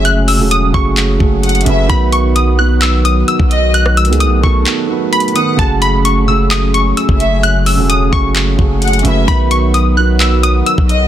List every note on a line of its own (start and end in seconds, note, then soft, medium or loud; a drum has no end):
0.00 0.41 F#1 loud
0.00 0.38 C#3 loud
0.00 5.55 F#3 medium
0.00 0.39 A3 medium
0.00 1.86 A3 medium
0.00 1.86 C#4 medium
0.00 0.40 F#4 medium
0.00 0.42 G#4 loud
0.00 1.86 G#4 medium
0.05 0.26 F#6 loud
0.05 closed hi-hat medium
0.28 0.49 E6 medium
0.28 open hi-hat medium
0.38 0.72 E1 loud
0.38 0.66 C#3 medium
0.38 0.67 A3 medium
0.38 0.68 F#4 medium
0.42 0.68 G#4 medium
0.51 0.73 D#6 medium
0.51 closed hi-hat medium
0.72 1.19 F#1 loud
0.72 1.10 C#3 medium
0.72 1.11 A3 medium
0.72 1.11 F#4 medium
0.72 1.86 C#6 medium
0.72 kick medium
0.76 1.12 G#4 medium
0.97 clap loud
0.97 closed hi-hat medium
1.18 1.65 F#1 loud
1.18 1.56 C#3 medium
1.18 1.57 A3 medium
1.18 1.57 F#4 medium
1.18 kick medium
1.22 1.58 G#4 medium
1.43 1.65 F#5 medium
1.43 closed hi-hat medium
1.49 closed hi-hat medium
1.55 closed hi-hat medium
1.61 1.84 C#3 loud
1.61 closed hi-hat medium
1.66 1.89 F#1 loud
1.66 1.85 A3 medium
1.66 1.85 F#4 medium
1.66 1.86 B4 medium
1.66 1.88 E5 loud
1.66 closed hi-hat medium
1.87 3.24 B1 loud
1.87 2.44 D#3 loud
1.87 5.55 D#3 medium
1.87 2.44 B3 medium
1.87 3.72 B3 medium
1.87 5.55 F#4 medium
1.87 2.45 F#4 medium
1.87 2.11 B5 loud
1.87 kick loud
1.87 closed hi-hat medium
1.92 2.46 B4 loud
2.12 2.34 C#6 medium
2.12 closed hi-hat medium
2.36 2.57 D#6 medium
2.36 closed hi-hat medium
2.57 3.31 D#3 medium
2.57 3.32 B3 medium
2.57 3.33 F#4 medium
2.57 2.80 F#6 medium
2.61 3.33 B4 medium
2.82 3.03 E6 medium
2.82 clap loud
2.82 closed hi-hat medium
3.05 3.26 D#6 medium
3.05 closed hi-hat medium
3.28 3.50 E6 medium
3.28 closed hi-hat medium
3.40 4.10 B1 loud
3.40 kick medium
3.51 3.73 D#5 medium
3.51 closed hi-hat medium
3.74 9.24 A3 medium
3.74 3.96 F#6 loud
3.74 closed hi-hat medium
3.86 cross-stick loud
3.97 4.19 E6 medium
3.97 closed hi-hat medium
4.05 4.28 C#2 loud
4.05 4.35 D#3 medium
4.05 4.36 B3 medium
4.05 closed hi-hat medium
4.09 4.37 F#4 medium
4.09 4.37 G#4 medium
4.09 closed hi-hat medium
4.20 4.42 D#6 medium
4.20 closed hi-hat medium
4.26 4.42 B1 loud
4.41 4.66 B1 loud
4.41 4.79 D#3 medium
4.41 4.80 B3 medium
4.41 4.80 F#4 medium
4.41 5.09 C#6 medium
4.41 kick medium
4.45 4.81 A4 medium
4.66 clap loud
4.66 closed hi-hat medium
4.87 5.25 D#3 medium
4.87 5.26 B3 medium
4.87 5.27 F#4 medium
4.92 5.27 B4 medium
5.13 5.34 B5 medium
5.13 closed hi-hat medium
5.20 closed hi-hat medium
5.28 closed hi-hat soft
5.33 5.53 D#3 medium
5.33 5.54 B3 medium
5.33 5.54 F#4 medium
5.33 5.58 F#5 medium
5.33 5.57 D#6 medium
5.33 closed hi-hat medium
5.38 5.55 B4 medium
5.57 6.93 F#1 loud
5.57 6.13 C#3 loud
5.57 11.08 F#3 medium
5.57 6.13 A3 medium
5.57 9.24 C#4 medium
5.57 6.14 F#4 medium
5.57 9.24 G#4 medium
5.57 5.80 A5 loud
5.57 kick loud
5.57 closed hi-hat medium
5.61 6.15 G#4 loud
5.82 6.03 B5 loud
5.82 closed hi-hat medium
6.05 6.26 C#6 medium
6.05 closed hi-hat medium
6.26 7.00 C#3 medium
6.26 7.01 A3 medium
6.26 7.02 F#4 medium
6.26 6.50 E6 medium
6.30 7.03 G#4 medium
6.51 6.73 D#6 medium
6.51 clap loud
6.51 closed hi-hat medium
6.74 6.96 C#6 medium
6.74 closed hi-hat medium
6.97 7.19 E6 medium
6.97 closed hi-hat medium
7.09 7.79 F#1 loud
7.09 kick medium
7.20 7.42 E5 medium
7.20 closed hi-hat medium
7.43 7.65 F#6 loud
7.43 closed hi-hat medium
7.66 7.88 E6 medium
7.66 open hi-hat medium
7.76 8.11 E1 loud
7.76 8.05 C#3 medium
7.76 8.05 A3 medium
7.76 8.06 F#4 medium
7.80 8.07 G#4 medium
7.90 8.11 D#6 medium
7.90 closed hi-hat medium
8.10 8.57 F#1 loud
8.10 8.48 C#3 medium
8.10 8.49 A3 medium
8.10 8.50 F#4 medium
8.10 9.24 C#6 medium
8.10 kick medium
8.15 8.50 G#4 medium
8.36 clap loud
8.36 closed hi-hat medium
8.57 9.03 F#1 loud
8.57 8.94 C#3 medium
8.57 8.95 A3 medium
8.57 8.96 F#4 medium
8.57 kick medium
8.61 8.97 G#4 medium
8.82 9.04 F#5 medium
8.82 closed hi-hat medium
8.88 closed hi-hat medium
8.93 closed hi-hat medium
8.99 9.22 C#3 loud
8.99 closed hi-hat medium
9.04 9.27 F#1 loud
9.04 9.23 A3 medium
9.04 9.24 F#4 medium
9.04 9.24 B4 loud
9.04 9.27 E5 medium
9.04 closed hi-hat medium
9.26 10.62 B1 loud
9.26 9.82 D#3 loud
9.26 11.08 D#3 medium
9.26 9.83 B3 medium
9.26 11.08 B3 medium
9.26 11.08 F#4 medium
9.26 9.83 F#4 medium
9.26 9.49 B5 loud
9.26 kick loud
9.26 closed hi-hat medium
9.30 9.84 B4 loud
9.51 9.73 C#6 medium
9.51 closed hi-hat medium
9.74 9.96 D#6 medium
9.74 closed hi-hat medium
9.95 10.70 D#3 medium
9.95 10.70 B3 medium
9.95 10.71 F#4 medium
9.95 10.19 F#6 medium
9.99 10.72 B4 medium
10.20 10.42 E6 medium
10.20 clap loud
10.20 closed hi-hat medium
10.43 10.65 D#6 medium
10.43 closed hi-hat medium
10.66 10.88 E6 medium
10.66 closed hi-hat medium
10.78 11.08 B1 loud
10.78 kick medium
10.89 11.08 D#5 medium
10.89 closed hi-hat medium